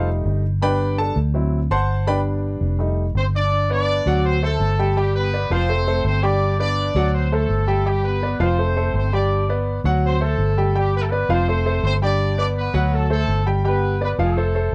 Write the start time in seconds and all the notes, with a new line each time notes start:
Already playing: F1 G3 A3 D#4
0.25 G1
0.62 G3 B3 D4 B4 D5 G5 B5
0.98 A4 A5
1.16 D2
1.34 F#3 C4 E4
1.70 G1 C5 F#5 A5 C6
2.07 G3 B3 D4 B4 D5 G5 B5
2.61 F1
2.79 G3 A3 D#4
3.15 G1 C4 C5
3.35 D4 D5
3.70 B3 D4 B4 D5
4.06 D2 F#3 F#4 F#5
4.25 C4 C5
4.43 A3 A4 C5
4.60 G1
4.79 G3 G4 G5
4.97 G3 G4 G5
5.15 B3 B4
5.33 B3 B4 D5
5.50 F1 F3 C4 F4 C5 F5
5.69 A3 A4 C5
5.87 A3 A4 C5
6.04 G1 C4 C5
6.23 G3 D4 G4 D5 G5
6.59 B3 D4 B4 D5
6.95 D2 F#3 F#4 F#5
7.15 C4 C5
7.32 A3 A4 C5
7.49 G1
7.67 G3 G4 G5
7.86 G3 G4 G5
8.05 B3 B4
8.22 B3 B4 D5
8.40 F1 F3 C4 F4 C5 F5
8.58 A3 A4 C5
8.76 A3 A4 C5
8.94 G1 C4 C5
9.13 G3 D4 G4 D5 G5
9.49 B3 B4 D5
9.84 D2 F#3 F#4 F#5
10.05 C4 C5
10.21 A3 A4 C5
10.38 G1
10.58 G3 G4 G5
10.75 G3 G4 G5
10.95 B3 B4
11.01 A3 A4
11.09 B3 B4 D5
11.29 F1 F3 C4 F4 C5 F5
11.48 A3 A4 C5
11.66 A3 A4 C5
11.83 G1 C4 C5
12.02 G3 D4 G4 D5 G5
12.38 B3 D4 B4 D5
12.57 B3 B4
12.74 D2 F#3 F#4 F#5
12.93 A3 A4
13.10 A3 A4 C5
13.28 G1
13.46 G3 G4 G5
13.64 G3 B3 G4 B4 G5
14.01 B3 B4 D5
14.18 F1 F3 A3 F4 A4 F5
14.37 A3 A4 C5
14.55 A3 A4 C5